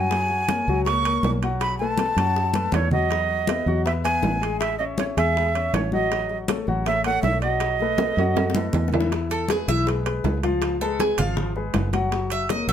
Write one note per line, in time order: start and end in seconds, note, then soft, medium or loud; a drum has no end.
0.00 0.61 F#2 medium
0.00 0.81 G#5 loud
0.11 0.42 F#3 medium
0.11 0.42 F#5 medium
0.11 high bongo medium
0.11 high conga soft
0.11 high timbale medium
0.30 high bongo soft
0.30 high conga soft
0.48 0.65 A#3 medium
0.48 0.65 A#4 medium
0.48 0.65 C#5 medium
0.48 high bongo medium
0.48 high conga medium
0.48 high timbale medium
0.48 low timbale medium
0.68 1.20 C#2 medium
0.68 0.84 F#3 medium
0.68 0.84 F#4 medium
0.68 0.84 F#5 medium
0.68 high bongo soft
0.68 high conga soft
0.85 1.02 A#3 medium
0.85 1.02 A#4 medium
0.85 1.02 C#5 medium
0.85 1.30 C#6 loud
0.85 high bongo medium
0.85 high conga soft
0.85 high timbale medium
1.04 1.37 A#3 medium
1.04 1.37 A#4 medium
1.04 1.37 C#5 medium
1.04 high bongo soft
1.04 high conga soft
1.04 high timbale medium
1.23 2.11 B1 medium
1.23 high bongo soft
1.23 low bongo medium
1.23 high conga medium
1.23 low timbale medium
1.42 1.74 F#3 medium
1.42 1.74 F#4 medium
1.42 1.74 F#5 medium
1.42 high conga soft
1.42 high timbale medium
1.61 1.78 B5 medium
1.61 high bongo medium
1.61 high conga soft
1.61 high timbale medium
1.78 1.96 A3 medium
1.78 1.96 A4 medium
1.78 1.96 B4 medium
1.78 2.76 A5 medium
1.78 high bongo soft
1.78 high conga soft
1.98 2.15 A3 medium
1.98 2.15 A4 medium
1.98 2.15 B4 medium
1.98 high bongo medium
1.98 high conga medium
1.98 high timbale medium
1.98 low timbale medium
2.17 2.69 F#2 medium
2.17 2.49 F#3 medium
2.17 2.49 F#4 medium
2.17 2.49 F#5 medium
2.17 high bongo soft
2.17 high timbale medium
2.36 high bongo medium
2.36 high conga soft
2.54 2.85 A3 medium
2.54 2.86 A4 medium
2.54 2.86 B4 medium
2.54 high conga medium
2.54 high timbale medium
2.72 3.61 E2 medium
2.72 2.92 C#5 medium
2.72 high bongo soft
2.72 low bongo medium
2.72 high conga medium
2.72 high timbale medium
2.72 low timbale medium
2.91 3.08 F#3 medium
2.91 3.08 F#4 medium
2.91 3.82 D#5 medium
2.91 3.08 F#5 medium
2.91 low conga loud
3.10 3.41 F#3 medium
3.10 3.42 F#4 medium
3.10 3.42 F#5 medium
3.10 high bongo medium
3.10 high conga soft
3.10 high timbale medium
3.29 high bongo soft
3.29 high conga soft
3.47 3.64 B3 medium
3.47 3.65 B4 medium
3.47 3.65 E5 medium
3.47 high bongo medium
3.47 high conga medium
3.47 high timbale medium
3.47 low timbale medium
3.66 4.19 E2 medium
3.66 3.83 F#3 medium
3.66 3.83 F#4 medium
3.66 3.83 F#5 medium
3.66 high bongo soft
3.66 high conga soft
3.85 4.02 B3 medium
3.85 4.02 B4 medium
3.85 3.92 E5 medium
3.85 4.02 E5 medium
3.85 high bongo medium
3.85 high conga soft
3.85 high timbale medium
4.04 4.35 B3 medium
4.04 4.36 B4 medium
4.04 4.36 E5 medium
4.04 4.57 G#5 medium
4.04 high bongo soft
4.04 high conga soft
4.04 high timbale medium
4.23 5.11 A1 medium
4.23 high bongo soft
4.23 low bongo medium
4.23 high conga medium
4.23 low timbale medium
4.41 4.73 G#3 medium
4.41 4.73 G#4 medium
4.41 4.73 G#5 medium
4.41 high conga soft
4.41 high timbale medium
4.60 4.78 E5 medium
4.60 high bongo medium
4.60 high conga soft
4.60 high timbale medium
4.78 4.95 C#4 medium
4.78 4.95 C#5 medium
4.78 4.84 D#5 medium
4.78 4.96 E5 medium
4.78 high bongo soft
4.78 high conga soft
4.98 5.14 C#4 medium
4.98 5.04 C#5 medium
4.98 5.14 C#5 medium
4.98 5.14 E5 medium
4.98 high bongo medium
4.98 high conga medium
4.98 high timbale medium
4.98 low timbale medium
5.17 5.70 E2 medium
5.17 5.48 G#3 medium
5.17 5.48 G#4 medium
5.17 5.76 E5 medium
5.17 5.48 G#5 medium
5.17 high bongo soft
5.17 high timbale medium
5.37 high bongo medium
5.37 high conga soft
5.55 5.86 C#4 medium
5.55 5.86 C#5 medium
5.55 5.86 E5 medium
5.55 high bongo soft
5.55 high conga soft
5.55 high timbale medium
5.73 6.62 A1 medium
5.73 5.93 C#5 medium
5.73 high bongo soft
5.73 low bongo medium
5.73 high conga medium
5.73 high timbale medium
5.73 low timbale medium
5.92 6.08 F#3 medium
5.92 6.08 F#4 medium
5.92 6.38 D#5 medium
5.92 6.09 F#5 medium
5.92 high conga medium
6.11 6.42 F#3 medium
6.11 6.43 F#4 medium
6.11 6.43 F#5 medium
6.11 high bongo medium
6.11 high conga soft
6.11 high timbale medium
6.29 high bongo soft
6.29 high conga soft
6.48 6.64 A3 medium
6.48 6.64 A4 medium
6.48 6.64 C#5 medium
6.48 high bongo medium
6.48 high conga medium
6.48 high timbale medium
6.48 low timbale medium
6.67 7.20 A1 medium
6.67 6.83 F#3 medium
6.67 6.84 F#4 medium
6.67 6.84 F#5 medium
6.67 high bongo soft
6.67 high conga soft
6.86 7.02 A3 medium
6.86 7.02 A4 medium
6.86 7.02 C#5 medium
6.86 7.04 E5 medium
6.86 high bongo medium
6.86 high conga soft
6.86 high timbale medium
7.04 7.37 A3 medium
7.04 7.37 A4 medium
7.04 7.37 C#5 medium
7.04 7.22 F#5 loud
7.04 high bongo soft
7.04 high conga soft
7.04 high timbale medium
7.23 8.12 B1 medium
7.23 7.41 E5 medium
7.23 high bongo soft
7.23 low bongo medium
7.23 high conga medium
7.23 low timbale medium
7.41 7.74 F#3 medium
7.41 7.74 F#4 medium
7.41 8.88 D#5 medium
7.41 7.74 F#5 medium
7.41 high conga soft
7.41 high timbale medium
7.60 high bongo medium
7.60 high conga soft
7.60 high timbale medium
7.79 7.96 A3 medium
7.79 7.97 A4 medium
7.79 7.97 B4 medium
7.79 high bongo soft
7.79 high conga soft
7.98 8.16 A3 medium
7.98 8.15 A4 medium
7.98 8.16 B4 medium
7.98 high bongo medium
7.98 high conga medium
7.98 high timbale medium
8.17 8.70 F#2 medium
8.17 8.49 F#3 medium
8.17 8.49 F#4 medium
8.17 8.49 F#5 medium
8.17 high bongo soft
8.17 high conga soft
8.17 high timbale medium
8.36 high bongo medium
8.36 high conga medium
8.36 high timbale medium
8.50 high bongo medium
8.55 8.86 A3 medium
8.55 8.87 A4 medium
8.55 8.87 B4 medium
8.55 high conga medium
8.55 low timbale medium
8.73 9.62 E2 medium
8.73 low conga loud
8.73 low timbale medium
8.88 low bongo medium
8.93 9.09 E3 medium
8.93 9.09 E4 medium
8.93 9.09 E5 medium
8.93 low conga medium
8.93 low timbale medium
9.00 low bongo medium
9.11 9.42 E3 medium
9.11 9.43 E4 medium
9.11 9.43 E5 medium
9.11 high bongo medium
9.11 high conga soft
9.11 high timbale medium
9.30 9.49 A4 medium
9.30 high conga soft
9.30 high timbale medium
9.48 9.65 G#3 medium
9.48 9.65 G#4 medium
9.48 9.68 G#4 medium
9.48 9.65 B4 medium
9.48 high bongo medium
9.48 high conga medium
9.48 high timbale medium
9.48 low timbale medium
9.68 10.20 B1 medium
9.68 9.84 E3 medium
9.68 9.84 E4 medium
9.68 9.87 E5 loud
9.68 9.84 E5 medium
9.68 high bongo soft
9.68 high conga soft
9.86 10.02 G#3 medium
9.86 10.02 G#4 medium
9.86 10.03 B4 medium
9.86 high bongo medium
9.86 high conga soft
9.86 high timbale medium
10.06 10.37 G#3 medium
10.06 10.37 G#4 medium
10.06 10.37 B4 medium
10.06 high bongo soft
10.06 high conga soft
10.06 high timbale medium
10.24 11.12 C#2 medium
10.24 high bongo soft
10.24 low bongo medium
10.24 high conga medium
10.24 low timbale medium
10.43 10.74 F3 medium
10.43 10.74 F4 medium
10.43 10.75 F5 medium
10.43 high bongo soft
10.43 high conga medium
10.43 high timbale medium
10.62 high bongo medium
10.62 high conga soft
10.62 high timbale medium
10.81 10.96 G#3 medium
10.81 10.97 G#4 medium
10.81 10.99 A4 medium
10.81 10.97 B4 medium
10.81 high conga soft
11.00 11.15 G#3 medium
11.00 11.18 G#4 medium
11.00 11.15 G#4 medium
11.00 11.16 B4 medium
11.00 high bongo medium
11.00 high conga medium
11.00 high timbale medium
11.00 low timbale medium
11.18 11.71 G#1 medium
11.18 11.50 F3 medium
11.18 11.50 F4 medium
11.18 11.37 F5 loud
11.18 11.50 F5 medium
11.18 high bongo soft
11.18 low conga medium
11.18 high timbale medium
11.37 high bongo medium
11.37 high conga soft
11.37 low conga medium
11.56 11.87 G#3 medium
11.56 11.87 G#4 medium
11.56 11.87 B4 medium
11.56 high bongo soft
11.56 high conga soft
11.74 12.62 F#1 medium
11.74 high bongo soft
11.74 low bongo medium
11.74 high conga medium
11.74 high timbale medium
11.74 low timbale medium
11.93 12.09 F#3 medium
11.93 12.09 F#4 medium
11.93 12.09 F#5 medium
11.93 high bongo soft
11.93 high conga medium
11.93 high timbale medium
12.12 12.43 F#3 medium
12.12 12.43 F#4 medium
12.12 12.43 F#5 medium
12.12 high bongo medium
12.12 high conga soft
12.12 high timbale medium
12.30 12.49 E5 medium
12.30 high conga soft
12.30 high timbale medium
12.49 12.65 A#3 medium
12.49 12.66 A#4 medium
12.49 12.66 C#5 medium
12.49 12.68 D#5 medium
12.49 high bongo medium
12.49 high conga medium
12.49 high timbale medium
12.49 low timbale medium
12.68 12.73 A#1 medium
12.68 12.73 F#3 medium
12.68 12.73 F#4 medium
12.68 12.73 E5 loud
12.68 12.73 F#5 medium
12.68 high bongo soft
12.68 high conga soft